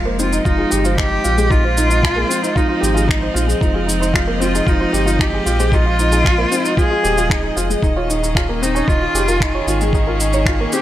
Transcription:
Already playing: F1 F3 G#3 C4 F5
0.05 A#3 C5
0.19 C4 D#4 F4 D#5, shaker
0.33 D#4, shaker
0.45 F1 D#4 F4, kick, shaker
0.58 F4 G#4
0.70 G1 G4, shaker
0.84 F4 C5, shaker
0.97 D#4 G4, finger snap, kick, shaker
1.11 D#4
1.24 A#1 F4, shaker
1.38 G#3 G#4, shaker
1.50 D#4 F4, kick, shaker
1.64 F4 C5
1.77 D#4, shaker
1.90 D#4, shaker
2.03 F4, finger snap, kick, shaker
2.16 A#3 G#4
2.29 C4, shaker
2.42 D#4 C5, shaker
2.55 D#4 F4, kick, shaker
2.68 F4
2.81 G#1 F4 G4, shaker
2.94 F4 G#4, shaker
3.07 D#4, finger snap, kick, shaker
3.21 D#4 C5
3.34 A#1 D#4 F4, shaker
3.47 G#3, shaker
3.61 F1 D#4 F4, kick, shaker
3.74 F4 G#4
3.86 D#4, shaker
4.00 D#4 C5, shaker
4.13 D#4 F4, finger snap, kick, shaker
4.27 A#3
4.40 C4 F4, shaker
4.54 D#4 G#4, shaker
4.66 F1 D#4 F4, kick, shaker
4.80 F4 C5
4.93 G1 D#4 G4, shaker
5.06 F4, shaker
5.19 D#4 F4 G4, finger snap, kick, shaker
5.33 D#4 G#4
5.46 A#1 F4, shaker
5.59 G#3 C5, shaker
5.72 D#4 F4, kick, shaker
5.86 F4
5.99 D#4 F4, shaker
6.12 D#4 G#4, shaker
6.25 F4, finger snap, kick, shaker
6.38 A#3 C5
6.51 C4 D#4, shaker
6.65 D#4, shaker
6.77 F4 G#4, kick, shaker
6.91 F4 G#4
7.03 D#1 G4, shaker
7.17 F4 G#4, shaker
7.30 D#4 F4, finger snap, kick, shaker
7.43 D#4
7.56 F1 F4 C5, shaker
7.70 G#3 F4, shaker
7.83 D#1 D#3 D#4, kick, shaker
7.96 F4 C#5
8.02 C#4
8.08 D#4 G#4, shaker
8.23 D#4, shaker
8.35 F4 G#4, finger snap, kick, shaker
8.49 A#3 A#4
8.61 C4 D#4, shaker
8.75 C#4 C#5, shaker
8.88 D#1 D#4 F4, kick, shaker
9.02 F4
9.14 F1 G4 G#4, shaker
9.28 F4 A#4, shaker
9.40 D#4, finger snap, kick, shaker
9.55 D#4 C#5
9.67 G#1 D#4 F4, shaker
9.81 G#3, shaker
9.93 D#4 G#4, kick, shaker
10.07 F4 A#4
10.20 D#4, shaker
10.33 D#4 C#5, shaker
10.46 D#4 F4, finger snap, kick, shaker
10.60 A#3
10.73 C4 G4 G#4, shaker

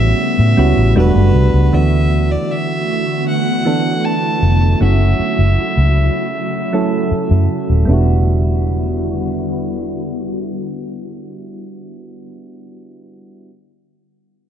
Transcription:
Already playing: A1 C#3 G3 A3 B3 C#4 E4 F#4 E5
0.39 A2
0.57 C#2 G3 B3 C#4 E4 F#4
0.77 A1
0.96 E1 G3 A3 B3 D4 F#4 B4
1.16 F#1
1.34 C2
1.54 C#2
1.73 D2 D3 E3 A3 B3 D4 E4 F#4 E5
2.32 D5
2.51 E5
3.28 F#5
3.65 E3 A3 B3 D4 A4
4.05 A5
4.43 F1
4.80 F#1 C#3 F#3 A3 C#4 E4 F#4 E5
5.20 muted fingered electric bass stroke
5.39 F#1
5.58 muted fingered electric bass stroke
5.77 C#2
6.73 F#3 A3 C#4 E4 A4
7.11 muted fingered electric bass stroke
7.31 F#2
7.70 D#1
7.85 E1 D3 G3 B3 D4 E4 F#4
7.91 E4 F#4

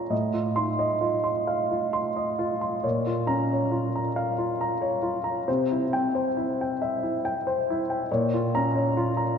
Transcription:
Already playing: F4 C#5 F5 A#5
0.10 A2 D#5
0.33 F4
0.56 D#4 C6
0.79 D#5
1.01 F4
1.24 C6
1.47 F5
1.71 F4
1.93 C6
2.16 D#5
2.39 F4
2.61 C6
2.84 A#2 C#5
3.07 F4
3.27 C#4 A#5
3.52 C#5
3.72 F4
3.95 A#5
4.16 F5
4.38 F4
4.61 A#5
4.81 C#5
5.02 F4
5.24 A#5
5.48 C3 C5
5.71 E4
5.93 C4 G5
6.15 C5
6.37 E4
6.61 G5
6.82 E5
7.03 E4
7.25 G5
7.47 C5
7.70 E4
7.90 G5
8.11 A#2 C#5
8.34 F4
8.54 C#4 A#5
8.75 C#5
8.97 F4
9.17 A#5

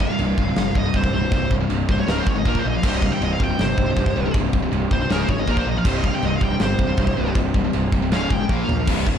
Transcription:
Already playing: C2 G2 C3
0.00 C2 G2 F5, kick
0.10 C2 G2
0.19 C1 C2 G2 C3, china
0.38 C1 C2 G2 C3, kick
0.48 C2 G2
0.56 G1 C2 G2 C3, snare, china
0.75 C1 C2 G2 D#5, kick
0.85 C2 G2
0.94 C1 C2 G2 C3 C5, kick, china
1.04 kick
1.13 C1 C2 G2 C3 C5
1.23 C2 G2
1.32 C1 C2 G2 C3 C5, kick, china
1.51 C1 C2 G2, kick
1.60 C2 G2
1.70 C1 C2 G2 C3, china
1.89 C1 C2 G2 C3 C5, kick
1.98 C2 G2 C#5
2.07 C#1 C#2 G#2 C#3 A#4, snare, china
2.19 C5
2.26 G#1 C#2 G#2 C#5, kick
2.36 C#2 G#2 D#5
2.45 A#1 A#2 F3 A#3 A#4, kick, china
2.55 C5, kick
2.65 A#1 A#2 F3 A#3 D#5
2.74 A#2 F3 F5
2.83 C1 C2 G2 C3 D#3 C4 G4, kick, china, crash
2.87 C5
2.95 D#5
3.02 C2 G2 F5, kick
3.12 C2 G2 G5
3.21 C1 C2 G2 C3 D#5, china
3.33 F5
3.40 C1 C2 G2 C3 G5, kick
3.50 C2 G2
3.59 G1 C2 G2 C3 C5, snare, china
3.78 C1 C2 G2, kick
3.87 C2 G2
3.96 C1 C2 G2 C3, kick, china
4.06 kick
4.16 C1 C2 G2 C3
4.26 C2 G2
4.34 C1 C2 G2 C3, kick, china
4.53 C1 C2 G2, kick
4.62 C2 G2
4.71 C1 C2 G2 C3, china
4.91 C1 C2 G2 C3 C5, kick
5.00 C2 G2 C5
5.09 C#1 C#2 G#2 C#3 G#3 G#4 A#4, snare, china
5.21 C5
5.28 G#1 C#2 G#2 C#5, kick
5.38 C#2 G#2 D#5
5.47 A#1 A#2 F3 A#3 A#4, kick, china
5.57 C5, kick
5.65 A#1 A#2 F3 A#3 D#5
5.76 A#2 F3 F5
5.84 C1 C2 G2 C3 D#3 C4 G4 C5, kick, china, crash
5.97 D#5
6.04 C2 G2 F5, kick
6.14 C2 G2 G5
6.22 C1 C2 G2 C3 D#5, china
6.36 F5
6.41 C1 C2 G2 C3 G5, kick
6.51 C2 G2
6.60 G1 C2 G2 C3 C5, snare, china
6.79 C1 C2 G2, kick
6.89 C2 G2
6.97 C1 C2 G2 C3, kick, china
7.07 kick
7.17 C1 C2 G2 C3
7.26 C2 G2
7.35 C1 C2 G2 C3, kick, china
7.54 C1 C2 G2, kick
7.64 C2 G2
7.73 C1 C2 G2 C3, china
7.92 C1 C2 G2 C3, kick
8.02 C2 G2
8.12 C#1 C#2 G#2 C#3 G#3 G#4 F5, snare, china
8.30 G#1 C#2 G#2 G5, kick
8.41 C#2 G#2
8.49 A#1 A#2 F3 A#3 A#4 F5, kick, high tom
8.69 A#1 A#2 F3 A#3, floor tom
8.79 A#2 F3
8.88 C1 C2 G2 C3, kick, crash, china
9.07 C1 C2 G2, kick

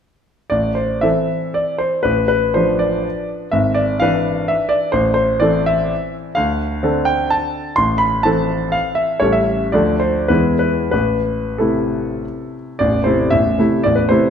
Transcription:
0.50 A1 D5
0.75 C5
1.01 E3 C4 A4 E5
1.54 D5
1.78 C5
2.03 A1 B4
2.28 B4
2.54 F3 D4 B4 C5
2.79 D5
3.52 G#1 E5
3.74 D5
4.00 E3 D4 B4 F5
4.48 E5
4.69 D5
4.92 A1 C5
5.14 C5
5.40 E3 C4 A4 D5
5.66 E5
6.35 D2 F5
6.83 D3 C4 A4
7.05 G5
7.30 A5
7.76 A1 C6
7.98 B5
8.23 E3 C4 A4 A5
8.72 F5
8.95 E5
9.20 A1 G3 C#4 A4 C#5
9.32 E5
9.72 D2 F3 A3 A4 D5
10.00 C5
10.28 E2 E3 G#3 E4 B4
10.59 B4
10.91 A1 B4
11.58 C3 A3 E4 A4
12.79 A0 A1 D5
13.04 C3 A3 E4 C5
13.30 A0 A1 E5
13.59 C3 A3 E4
13.83 A0 A1 D5
13.96 B4
14.09 C3 A3 E4 C5

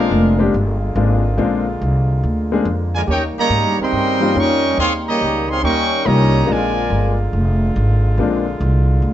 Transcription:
Already playing: D3 G#3 A#3 C4 D4 F4 G#4 A#4 F5
0.00 F4
0.11 F1
0.39 G#3 A#3 C4 D4 G4
0.54 G1
0.95 G#1 G#3 A#3 C4 D4 F4
1.37 A#1 G#3 A#3 C4 D4 F4
1.81 C2
2.23 D2
2.52 G#3 A#3 C4 D4 G#4
2.65 F2
2.95 D3 F3 G#3 F4 A#4 D5 G#5
3.08 D#2 D#3 G3 A#3 C#4 D#4 G4 A#4 C#5 G5
3.37 C#3 G3 A#3 G4 C#5 D#5 A#5, muted upright bass stroke
3.50 G#2
3.64 G2
3.79 D#2 C#3 G3 C4 A#4 D#5 G5 C6
3.92 G2
4.20 G3 A#3 C#4 D#4 F4
4.35 F2 G3 A#3 C#4 A#4 D#5 G5 C#6
4.78 D#2 C4 G#4 C#5 F5 C6
5.07 C#3 G3 A#3 G4 C#5 D#5 A#5
5.21 C#2
5.50 C4 G#4 C#5 F5 C6
5.63 D#2 G3 A#3 C#4 A#4 D#5 G5 C#6
6.05 C2 G3 A#3 C#4 D#4 F4 G4 C#5 D#5 A#5
6.47 A#1 D3 F3 G#3 A#3 C4 D4 F4 A#4 D5
6.51 G#5
6.90 G1
7.33 F1
7.76 G#1
8.18 A#1 G#3 A#3 C4 D4 F4
8.60 C2
9.02 D2

